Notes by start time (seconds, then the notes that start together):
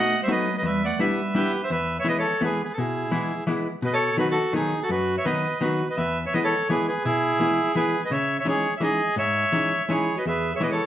Already playing: A3 B3 D#4 F#4 D#5 F#5
0.23 G3 C5 E5
0.28 F#3 A3 B3 D#4 F#4 B4 D#5
0.58 F#3 B4 D#5
0.62 E2 B4 E5
0.67 G3
0.85 A3 D5 F#5
0.99 G3 B3 D4 E4 B4 E5
1.35 G3 B3 D4 E4 G4 B4
1.63 C5 E5
1.70 E2 B4 E5
1.99 C#5 E5
2.04 E3 G#3 B3 E4
2.08 B4 D#5
2.19 A4 C#5
2.41 E3 G#3 B3 E4 B4
2.45 G#4
2.65 G#4 B4
2.73 A4
2.78 B2 E4 G#4
3.11 E3 G#3 B3 E4
3.47 E3 G#3 B3 E4
3.82 B2 B4 D#5
3.93 A4 C#5
4.17 D#3 F#3 B3 D#4 F#4 B4
4.31 F#4 A4
4.53 D#3 F#3 B3 D#4 G#4
4.83 F#4 A4
4.89 F#2 F#4 B4
5.18 C#5 E5
5.25 D#3 F#3 B3 D#4 B4 D#5
5.61 D#3 F#3 B3 D#4 F#4 B4
5.90 B4 D#5
5.97 E2 B4 E5
6.26 C#5 E5
6.34 E3 G#3 B3 E4 B4 D#5
6.44 A4 C#5
6.69 E3 G#3 B3 E4 G#4 B4
6.88 G#4 B4
7.05 B2 E4 G#4
7.40 E3 G#3 B3 E4
7.75 E3 G#3 B3 E4 G#4 B4
8.05 B4 D#5
8.11 C#3 C#5 E5
8.39 C#5 E5
8.45 E3 G#3 C#4 D#4 G#4 C#5
8.77 E3 G#3 E5
8.81 C#4 D#4 G#4 D#5
9.16 G#2 C#5 E5
9.52 E3 G#3 C#4 D#4
9.88 E3 G#3 C#4 D#4 E4 G#4 C#5
10.16 F#4 B4 D#5
10.26 E2 G#4 B4 E5
10.54 G#4 C#5 E5
10.60 E3 G#3 B3 E4 G#4 B4 D#5
10.70 E4 A4 C#5